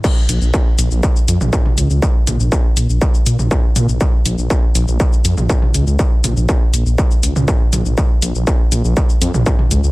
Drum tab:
CC |x---------------|----------------|----------------|----------------|
HH |--x---x---x---x-|--x---x---x---x-|--x---x---x---x-|--x---x---x---x-|
SH |x-xxx-xxxxxxx-xx|x-xxx-xxxxxxx-xx|x-xxx-xxxxxxx-xx|x-xxx-xxxxxxx-xx|
T2 |-----------o-o--|--o--------o--o-|-----------o-o--|--o--------o--o-|
BD |o---o---o---o---|o---o---o---o---|o---o---o---o---|o---o---o---o---|

CC |----------------|
HH |--x---x---x---x-|
SH |x-xxx-xxxxxxx-xx|
T2 |-----------o-o--|
BD |o---o---o---o---|